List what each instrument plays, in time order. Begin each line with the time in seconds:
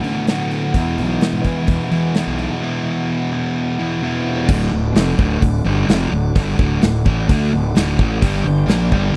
Already playing: overdriven electric guitar D2 A2 D3 A3 B3 F#4
0.02 distorted electric guitar D2 A2 D3, open hi-hat
0.26 overdriven electric guitar D2 A2 D3 A3 B3 F#4, distorted electric guitar D2 A2 D3, snare, open hi-hat
0.51 open hi-hat
0.74 overdriven electric guitar E2 B2 E3 G#3 B3 E4, fingered electric bass E2, distorted electric guitar E2 B2 E3, kick, open hi-hat
0.97 fingered electric bass B1, open hi-hat
1.21 snare, open hi-hat
1.33 fingered electric bass G#2
1.44 overdriven electric guitar E2 B2 E3 G#3 B3 E4, fingered electric bass E3, kick, open hi-hat
1.67 fingered electric bass E2, kick, open hi-hat
1.92 distorted electric guitar E2 B2 E3, fingered electric bass E3, open hi-hat
2.15 overdriven electric guitar E2 B2 E3 G#3 B3 E4, distorted electric guitar E2 B2 E3, snare, open hi-hat
2.27 fingered electric bass B1
2.38 open hi-hat
2.61 overdriven electric guitar E2 B2 E3 G#3 B3 E4, distorted electric guitar E2 B2 E3
3.32 overdriven electric guitar E2 B2 E3 G#3 B3 E4
3.79 distorted electric guitar E2 B2 E3
4.02 overdriven electric guitar E2 B2 E3 G#3 B3 E4, distorted electric guitar E2 B2 E3
4.15 tonewheel organ B3 C4
4.20 tonewheel organ D4 E4
4.27 tonewheel organ F4 G4
4.32 tonewheel organ A4 B4
4.38 tonewheel organ C5 D5
4.43 tonewheel organ E5 F5
4.49 fingered electric bass D1, distorted electric guitar D2 A2 D3, tonewheel organ F#4 A4 D5 F#5, kick, crash
4.73 fingered electric bass D1, distorted electric guitar D2 A2
4.95 fingered electric bass F1, distorted electric guitar F2 C3 F3, snare, open hi-hat
5.18 fingered electric bass D1, distorted electric guitar D2 A2 D3, kick
5.42 fingered electric bass D1, distorted electric guitar D2 A2, kick, open hi-hat
5.65 fingered electric bass G1, distorted electric guitar G2 D3 G3
5.88 fingered electric bass F1, distorted electric guitar F2 C3 F3, snare, open hi-hat
6.11 fingered electric bass D1, distorted electric guitar D2 A2
6.35 fingered electric bass G1, distorted electric guitar G2 D3 G3, kick, open hi-hat
6.58 fingered electric bass D1, distorted electric guitar D2 A2 D3, kick
6.82 fingered electric bass D1, distorted electric guitar D2 A2, snare, open hi-hat
7.05 fingered electric bass A1, distorted electric guitar A2 E3 A3, kick
7.28 fingered electric bass D2, distorted electric guitar D3 A3 D4, kick, open hi-hat
7.53 fingered electric bass D1, distorted electric guitar D2 A2
7.75 fingered electric bass D1, distorted electric guitar D2 A2 D3, snare, open hi-hat
7.99 fingered electric bass A1, distorted electric guitar A2 E3 A3, kick
8.21 fingered electric bass G1, overdriven electric guitar G2 D3 G3, distorted electric guitar G2 D3 G3, tonewheel organ D4 G4 D5 G5, kick, open hi-hat
8.44 fingered electric bass G1, overdriven electric guitar G2 D3, distorted electric guitar G2 D3
8.66 fingered electric bass A#1, overdriven electric guitar A#2 F3 A#3, distorted electric guitar A#2, snare, open hi-hat
8.70 distorted electric guitar F3 A#3
8.91 fingered electric bass G1, overdriven electric guitar G2 D3 G3, distorted electric guitar G2 D3 G3, kick